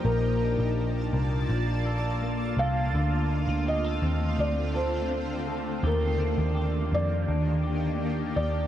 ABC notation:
X:1
M:4/4
L:1/16
Q:1/4=83
K:Bb
V:1 name="Felt piano"
B8 z6 f2- | f4 e4 d2 c6 | B6 d8 d2 |]
V:2 name="Clean electric guitar"
B,,2 D4 B,2 D2 A2 B,2 A2 | [D,A]2 E F G A C2 F2 A2 C2 A2 | [E,G]2 D2 G2 B,2 D2 G2 B,2 G2 |]
V:3 name="Ambient pad"
[B,Fda]16 | [D,A,C]16 | [E,B,DG]16 |]
V:4 name="Picked electric bass" clef=bass
B,,,3 B,,,3 C,,2 B,,,6 C,,2 | D,,3 D,,3 E,,2 D,,8 | E,,3 E,,3 F,,2 E,,6 E,,2 |]